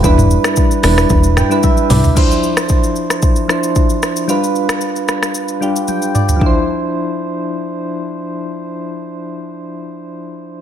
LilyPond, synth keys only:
\new Staff \with { instrumentName = "Synth keys" } { \time 4/4 \key d \dorian \tempo 4 = 113 << { r2 r8 g''8 e''8 d''8 | r1 | r2. g''8 d''8 | r1 |
r1 | } \\ { <g d' e' b'>4 r8 <g d' e' b'>8. r8 <g d' e' b'>8. r8 | <f d' e' c''>4~ <f d' e' c''>16 r4 r16 <f d' e' c''>4 r8 | <g d' f' b'>4~ <g d' f' b'>16 r4 r16 <g d' f' g'>4 r8 | <f d' e' c''>1~ |
<f d' e' c''>1 | } >> }